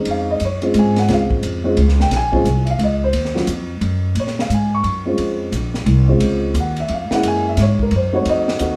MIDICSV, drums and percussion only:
0, 0, Header, 1, 2, 480
1, 0, Start_track
1, 0, Key_signature, -5, "minor"
1, 0, Tempo, 341686
1, 86, Time_signature, 3, 2, 24, 8
1, 12309, End_track
2, 0, Start_track
2, 0, Title_t, "Drums"
2, 74, Note_on_c, 9, 51, 70
2, 215, Note_off_c, 9, 51, 0
2, 559, Note_on_c, 9, 44, 52
2, 559, Note_on_c, 9, 51, 62
2, 699, Note_off_c, 9, 44, 0
2, 699, Note_off_c, 9, 51, 0
2, 866, Note_on_c, 9, 51, 48
2, 1007, Note_off_c, 9, 51, 0
2, 1039, Note_on_c, 9, 44, 53
2, 1039, Note_on_c, 9, 51, 69
2, 1180, Note_off_c, 9, 44, 0
2, 1180, Note_off_c, 9, 51, 0
2, 1352, Note_on_c, 9, 51, 47
2, 1359, Note_on_c, 9, 38, 41
2, 1493, Note_off_c, 9, 51, 0
2, 1500, Note_off_c, 9, 38, 0
2, 1523, Note_on_c, 9, 51, 59
2, 1530, Note_on_c, 9, 38, 41
2, 1663, Note_off_c, 9, 51, 0
2, 1670, Note_off_c, 9, 38, 0
2, 1834, Note_on_c, 9, 36, 63
2, 1974, Note_off_c, 9, 36, 0
2, 2006, Note_on_c, 9, 44, 46
2, 2006, Note_on_c, 9, 51, 62
2, 2147, Note_off_c, 9, 44, 0
2, 2147, Note_off_c, 9, 51, 0
2, 2484, Note_on_c, 9, 51, 66
2, 2625, Note_off_c, 9, 51, 0
2, 2650, Note_on_c, 9, 38, 29
2, 2790, Note_off_c, 9, 38, 0
2, 2811, Note_on_c, 9, 38, 43
2, 2951, Note_off_c, 9, 38, 0
2, 2966, Note_on_c, 9, 51, 73
2, 2973, Note_on_c, 9, 38, 44
2, 3107, Note_off_c, 9, 51, 0
2, 3114, Note_off_c, 9, 38, 0
2, 3274, Note_on_c, 9, 36, 58
2, 3414, Note_off_c, 9, 36, 0
2, 3448, Note_on_c, 9, 44, 58
2, 3448, Note_on_c, 9, 51, 58
2, 3589, Note_off_c, 9, 44, 0
2, 3589, Note_off_c, 9, 51, 0
2, 3746, Note_on_c, 9, 51, 51
2, 3886, Note_off_c, 9, 51, 0
2, 3925, Note_on_c, 9, 51, 62
2, 4065, Note_off_c, 9, 51, 0
2, 4397, Note_on_c, 9, 51, 75
2, 4537, Note_off_c, 9, 51, 0
2, 4567, Note_on_c, 9, 38, 28
2, 4707, Note_off_c, 9, 38, 0
2, 4726, Note_on_c, 9, 38, 49
2, 4866, Note_off_c, 9, 38, 0
2, 4876, Note_on_c, 9, 44, 54
2, 4876, Note_on_c, 9, 51, 67
2, 5017, Note_off_c, 9, 44, 0
2, 5017, Note_off_c, 9, 51, 0
2, 5356, Note_on_c, 9, 51, 56
2, 5497, Note_off_c, 9, 51, 0
2, 5836, Note_on_c, 9, 51, 69
2, 5977, Note_off_c, 9, 51, 0
2, 6000, Note_on_c, 9, 38, 31
2, 6141, Note_off_c, 9, 38, 0
2, 6169, Note_on_c, 9, 38, 53
2, 6310, Note_off_c, 9, 38, 0
2, 6325, Note_on_c, 9, 44, 49
2, 6325, Note_on_c, 9, 51, 65
2, 6465, Note_off_c, 9, 44, 0
2, 6465, Note_off_c, 9, 51, 0
2, 6799, Note_on_c, 9, 51, 56
2, 6939, Note_off_c, 9, 51, 0
2, 7273, Note_on_c, 9, 51, 67
2, 7413, Note_off_c, 9, 51, 0
2, 7761, Note_on_c, 9, 44, 52
2, 7761, Note_on_c, 9, 51, 61
2, 7901, Note_off_c, 9, 44, 0
2, 7901, Note_off_c, 9, 51, 0
2, 8067, Note_on_c, 9, 38, 40
2, 8208, Note_off_c, 9, 38, 0
2, 8237, Note_on_c, 9, 51, 63
2, 8377, Note_off_c, 9, 51, 0
2, 8716, Note_on_c, 9, 51, 77
2, 8856, Note_off_c, 9, 51, 0
2, 9196, Note_on_c, 9, 44, 56
2, 9196, Note_on_c, 9, 51, 69
2, 9337, Note_off_c, 9, 44, 0
2, 9337, Note_off_c, 9, 51, 0
2, 9503, Note_on_c, 9, 51, 53
2, 9644, Note_off_c, 9, 51, 0
2, 9671, Note_on_c, 9, 51, 56
2, 9811, Note_off_c, 9, 51, 0
2, 9987, Note_on_c, 9, 38, 63
2, 10128, Note_off_c, 9, 38, 0
2, 10161, Note_on_c, 9, 51, 78
2, 10301, Note_off_c, 9, 51, 0
2, 10634, Note_on_c, 9, 44, 47
2, 10634, Note_on_c, 9, 51, 70
2, 10641, Note_on_c, 9, 38, 37
2, 10774, Note_off_c, 9, 44, 0
2, 10774, Note_off_c, 9, 51, 0
2, 10781, Note_off_c, 9, 38, 0
2, 10948, Note_on_c, 9, 36, 56
2, 11088, Note_off_c, 9, 36, 0
2, 11111, Note_on_c, 9, 51, 56
2, 11252, Note_off_c, 9, 51, 0
2, 11595, Note_on_c, 9, 51, 70
2, 11736, Note_off_c, 9, 51, 0
2, 11915, Note_on_c, 9, 38, 50
2, 12055, Note_off_c, 9, 38, 0
2, 12071, Note_on_c, 9, 44, 60
2, 12071, Note_on_c, 9, 51, 71
2, 12211, Note_off_c, 9, 44, 0
2, 12211, Note_off_c, 9, 51, 0
2, 12309, End_track
0, 0, End_of_file